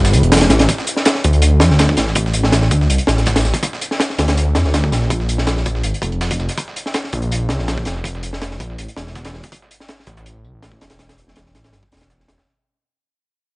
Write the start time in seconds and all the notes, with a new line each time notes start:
Already playing: G1 C4 E4 G4 B4
0.05 snare, closed hi-hat, tambourine
0.13 D2, closed hi-hat, tambourine
0.23 E1, closed hi-hat
0.32 snare, closed hi-hat, open hi-hat
0.36 snare, closed hi-hat
0.41 snare, closed hi-hat
0.50 A1, snare, closed hi-hat, tambourine
0.59 snare, closed hi-hat
0.69 kick, closed hi-hat, tambourine
0.78 snare
0.87 closed hi-hat, tambourine
0.96 snare
1.05 snare, closed hi-hat, tambourine
1.14 snare
1.24 D2, kick, closed hi-hat, tambourine
1.33 closed hi-hat
1.42 closed hi-hat, tambourine
1.60 F2, snare, closed hi-hat, tambourine
1.70 D2, snare
1.79 snare, closed hi-hat, tambourine
1.89 kick
1.97 A1, snare, closed hi-hat, tambourine
2.08 snare
2.15 kick, closed hi-hat, tambourine
2.26 snare
2.33 closed hi-hat, tambourine
2.43 snare
2.52 snare, closed hi-hat, tambourine
2.62 snare
2.71 D2, kick, closed hi-hat, tambourine
2.81 snare
2.90 C2, closed hi-hat, tambourine
2.98 closed hi-hat
3.07 A1, snare, closed hi-hat, tambourine
3.18 A1, snare, closed hi-hat
3.26 kick, snare, closed hi-hat, tambourine
3.36 snare, closed hi-hat, tambourine
3.41 snare, tambourine
3.45 A1, snare, tambourine
3.54 kick, snare, closed hi-hat
3.63 kick, closed hi-hat, tambourine
3.73 snare
3.81 closed hi-hat, tambourine
3.91 snare
4.00 snare, closed hi-hat, tambourine
4.10 snare
4.19 D2, snare, closed hi-hat, tambourine
4.28 snare, closed hi-hat
4.37 closed hi-hat, tambourine
4.55 F2, snare, closed hi-hat, tambourine
4.65 D2, snare
4.74 snare, closed hi-hat, tambourine
4.84 kick
4.92 A#1, snare, closed hi-hat, tambourine
5.02 snare
5.10 kick, closed hi-hat, tambourine
5.20 snare
5.29 closed hi-hat, tambourine
5.38 snare
5.47 snare, closed hi-hat, tambourine
5.57 snare
5.66 A#1, kick, closed hi-hat, tambourine
5.75 snare
5.83 G#1, closed hi-hat, tambourine
5.94 closed hi-hat
6.02 F1, kick, closed hi-hat, tambourine
6.12 F1, closed hi-hat
6.21 snare, closed hi-hat, open hi-hat
6.31 kick, closed hi-hat
6.39 F1, snare, tambourine
6.49 snare, closed hi-hat
6.57 kick, closed hi-hat, tambourine
6.68 snare
6.76 closed hi-hat, tambourine
6.86 snare
6.94 snare, closed hi-hat, tambourine
7.04 snare
7.13 A#1, kick, closed hi-hat, tambourine
7.22 closed hi-hat
7.32 closed hi-hat, tambourine
7.49 C#2, snare, closed hi-hat, tambourine
7.59 A#1, snare
7.68 snare, closed hi-hat, tambourine
7.78 kick
7.85 F1, snare, closed hi-hat, tambourine
7.96 snare
8.04 kick, closed hi-hat, tambourine
8.15 snare
8.23 closed hi-hat, tambourine
8.33 snare
8.42 snare, closed hi-hat, tambourine
8.51 snare
8.60 A#1, kick, closed hi-hat, tambourine
8.70 snare
8.78 A1, closed hi-hat, tambourine
8.88 closed hi-hat
8.97 E1, snare, closed hi-hat, tambourine
9.07 E1, snare, closed hi-hat
9.15 kick, snare, closed hi-hat, tambourine
9.25 snare, closed hi-hat, tambourine
9.30 snare, tambourine
9.34 E1, snare, tambourine
9.44 kick, snare, closed hi-hat
9.52 kick, closed hi-hat, tambourine
9.62 snare
9.71 closed hi-hat, tambourine
9.80 snare
9.88 snare, closed hi-hat, tambourine
9.99 snare
10.07 A1, kick, snare, closed hi-hat, tambourine
10.17 snare, closed hi-hat, tambourine
10.26 closed hi-hat, tambourine
10.44 C2, tambourine
10.54 A1
10.63 snare, closed hi-hat, tambourine
10.72 kick
10.81 E1, snare, closed hi-hat, tambourine
10.90 snare, closed hi-hat
10.99 snare, closed hi-hat, tambourine
11.09 snare, closed hi-hat
11.18 closed hi-hat, tambourine
11.28 snare
11.36 snare, closed hi-hat, tambourine
11.46 snare
11.55 A1, snare, closed hi-hat, tambourine
11.64 snare, closed hi-hat
11.73 G1, snare, closed hi-hat, tambourine
11.83 kick
11.92 E1, snare, closed hi-hat, tambourine
11.96 snare, closed hi-hat
12.01 E1, snare, closed hi-hat
12.10 snare, closed hi-hat, open hi-hat
12.20 snare
12.28 E1, snare, closed hi-hat
12.33 snare, tambourine
12.38 snare, tambourine